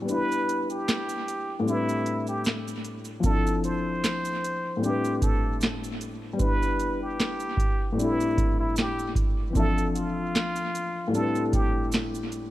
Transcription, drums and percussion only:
0.08 shaker
0.32 shaker
0.49 closed hi-hat, shaker
0.70 shaker
0.88 snare, clap, shaker
1.09 shaker
1.28 closed hi-hat, shaker
1.68 shaker
1.89 shaker
2.06 closed hi-hat, shaker
2.27 shaker
2.45 snare, clap, shaker
2.68 shaker
2.85 closed hi-hat, shaker
3.05 shaker
3.23 kick, shaker
3.47 shaker
3.64 closed hi-hat, shaker
4.04 snare, clap, shaker
4.25 shaker
4.44 closed hi-hat, shaker
4.83 shaker
5.04 shaker
5.22 kick, closed hi-hat, shaker
5.61 snare, clap, shaker
5.84 shaker
6.01 closed hi-hat, shaker
6.39 kick, shaker
6.63 shaker
6.80 closed hi-hat, shaker
7.20 snare, clap, shaker
7.40 shaker
7.57 kick, closed hi-hat, shaker
7.99 shaker
8.20 shaker
8.38 kick, closed hi-hat, shaker
8.76 snare, clap, shaker
8.99 shaker
9.15 kick, closed hi-hat, shaker
9.55 kick, shaker
9.78 shaker
9.96 closed hi-hat, shaker
10.35 snare, clap, shaker
10.56 shaker
10.75 closed hi-hat, shaker
11.14 shaker
11.35 shaker
11.53 kick, closed hi-hat, shaker
11.92 snare, clap, shaker
12.15 shaker
12.32 closed hi-hat, shaker

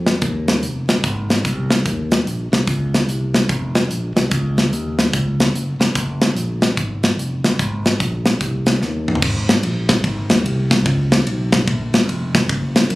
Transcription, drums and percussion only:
0.07 snare, closed hi-hat
0.22 kick, closed hi-hat
0.48 snare, closed hi-hat
0.63 closed hi-hat
0.89 snare, closed hi-hat
1.04 kick, closed hi-hat
1.30 snare, closed hi-hat
1.45 kick, closed hi-hat
1.71 snare, closed hi-hat
1.86 kick, closed hi-hat
2.12 snare, closed hi-hat
2.27 closed hi-hat
2.53 snare, closed hi-hat
2.67 kick, closed hi-hat
2.94 snare, closed hi-hat
3.09 closed hi-hat
3.34 snare, closed hi-hat
3.49 kick, closed hi-hat
3.75 snare, closed hi-hat
3.91 closed hi-hat
4.17 snare, closed hi-hat
4.31 kick, closed hi-hat
4.58 snare, closed hi-hat
4.73 closed hi-hat
4.99 snare, closed hi-hat
5.13 kick, closed hi-hat
5.40 snare, closed hi-hat
5.55 closed hi-hat
5.81 snare, closed hi-hat
5.95 kick, closed hi-hat
6.21 snare, closed hi-hat
6.37 closed hi-hat
6.62 snare, closed hi-hat
6.77 kick, closed hi-hat
7.03 snare, closed hi-hat
7.19 closed hi-hat
7.44 snare, closed hi-hat
7.59 kick, closed hi-hat
7.86 snare, closed hi-hat
8.00 kick, closed hi-hat
8.26 snare, closed hi-hat
8.41 kick, closed hi-hat
8.66 snare, closed hi-hat
8.82 snare
9.08 mid tom
9.15 floor tom
9.22 kick, crash
9.49 snare, ride
9.63 ride
9.89 kick, snare, ride
10.04 kick, ride
10.30 snare, ride
10.46 ride
10.71 kick, snare, ride
10.86 kick, ride
11.12 snare, ride
11.27 ride
11.52 kick, snare, ride
11.68 kick, ride
11.94 snare, ride
12.09 ride
12.35 kick, snare, ride
12.49 kick, ride
12.76 snare, ride
12.90 ride

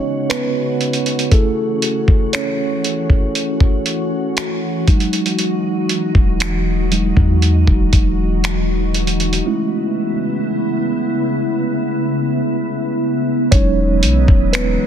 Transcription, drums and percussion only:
0.30 finger snap, closed hi-hat
0.81 closed hi-hat
0.93 closed hi-hat
1.06 closed hi-hat
1.19 closed hi-hat
1.32 kick, closed hi-hat
1.82 closed hi-hat
2.08 kick
2.33 finger snap, closed hi-hat
2.84 closed hi-hat
3.10 kick
3.35 closed hi-hat
3.60 kick
3.86 closed hi-hat
4.37 finger snap, closed hi-hat
4.88 kick, closed hi-hat
5.00 closed hi-hat
5.13 closed hi-hat
5.26 closed hi-hat
5.39 closed hi-hat
5.89 closed hi-hat
6.15 kick
6.40 finger snap, closed hi-hat
6.92 closed hi-hat
7.17 kick
7.42 closed hi-hat
7.67 kick
7.93 kick, closed hi-hat
8.44 finger snap, closed hi-hat
8.94 closed hi-hat
9.07 closed hi-hat
9.20 closed hi-hat
9.33 closed hi-hat
13.52 kick, closed hi-hat
14.03 closed hi-hat
14.28 kick
14.53 finger snap, closed hi-hat

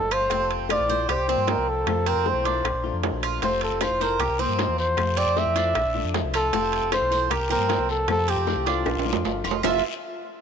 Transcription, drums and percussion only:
0.11 high bongo, high timbale, claves
0.30 high bongo, high timbale
0.51 high timbale
0.69 high bongo, high timbale, low timbale, claves
1.09 high bongo, high timbale, claves
1.48 high bongo, low bongo, high timbale, low timbale
1.87 high bongo, high timbale, claves
2.06 high bongo, high timbale
2.26 high bongo, low timbale
2.45 high bongo, high timbale
2.65 high bongo, high timbale, claves
3.03 high bongo, low bongo, high timbale, low timbale
3.23 high bongo, high timbale, claves
3.42 high bongo, high timbale, long guiro
3.61 high timbale
3.81 high bongo, high timbale, low timbale, short guiro, claves
4.01 short guiro
4.20 high bongo, high timbale, long guiro, claves
4.59 high bongo, low bongo, high timbale, low timbale, short guiro
4.78 short guiro
4.97 high bongo, high timbale, long guiro, claves
5.17 high bongo, high timbale
5.37 high bongo, low timbale, short guiro
5.56 high timbale, short guiro
5.75 high bongo, high timbale, long guiro, claves
6.14 high bongo, low bongo, high timbale, low timbale, short guiro
6.34 high bongo, high timbale, short guiro, claves
6.53 high bongo, high timbale, long guiro
6.73 high timbale
6.92 high bongo, high timbale, low timbale, short guiro, claves
7.12 short guiro
7.31 high bongo, high timbale, long guiro, claves
7.69 high bongo, low bongo, high timbale, low timbale, short guiro
7.89 short guiro
8.08 high bongo, high timbale, long guiro, claves
8.28 high bongo, high timbale
8.47 high bongo, low timbale, short guiro
8.66 high bongo, high timbale, short guiro
8.86 high bongo, high timbale, long guiro, claves
8.99 high timbale
9.05 low bongo
9.13 low timbale
9.25 low timbale, short guiro
9.44 low bongo, short guiro, claves
9.51 low timbale
9.63 low bongo, low timbale, long guiro, claves

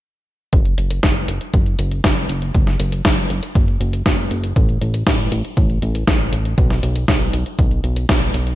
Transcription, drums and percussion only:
0.53 kick, closed hi-hat
0.65 closed hi-hat
0.78 closed hi-hat
0.91 closed hi-hat
1.03 kick, snare, closed hi-hat
1.16 closed hi-hat
1.28 closed hi-hat
1.41 closed hi-hat
1.54 kick, closed hi-hat
1.66 closed hi-hat
1.79 closed hi-hat
1.91 closed hi-hat
2.04 kick, snare, closed hi-hat
2.17 closed hi-hat
2.29 closed hi-hat
2.42 closed hi-hat
2.54 kick, closed hi-hat
2.67 snare, closed hi-hat
2.80 closed hi-hat
2.92 closed hi-hat
3.05 kick, snare, closed hi-hat
3.18 closed hi-hat
3.30 closed hi-hat
3.43 closed hi-hat
3.55 kick, closed hi-hat
3.68 closed hi-hat
3.81 closed hi-hat
3.93 closed hi-hat
4.06 kick, snare, closed hi-hat
4.18 closed hi-hat
4.31 closed hi-hat
4.44 closed hi-hat
4.56 kick, closed hi-hat
4.69 closed hi-hat
4.81 closed hi-hat
4.94 closed hi-hat
5.07 kick, snare, closed hi-hat
5.19 closed hi-hat
5.32 closed hi-hat
5.45 closed hi-hat
5.57 kick, closed hi-hat
5.70 closed hi-hat
5.82 closed hi-hat
5.95 closed hi-hat
6.07 kick, snare, closed hi-hat
6.20 closed hi-hat
6.33 closed hi-hat
6.45 closed hi-hat
6.58 kick, closed hi-hat
6.70 snare, closed hi-hat
6.83 closed hi-hat
6.96 closed hi-hat
7.08 kick, snare, closed hi-hat
7.21 closed hi-hat
7.33 closed hi-hat
7.46 closed hi-hat
7.59 kick, closed hi-hat
7.71 closed hi-hat
7.84 closed hi-hat
7.96 closed hi-hat
8.09 kick, snare, closed hi-hat
8.22 closed hi-hat
8.34 closed hi-hat
8.47 closed hi-hat

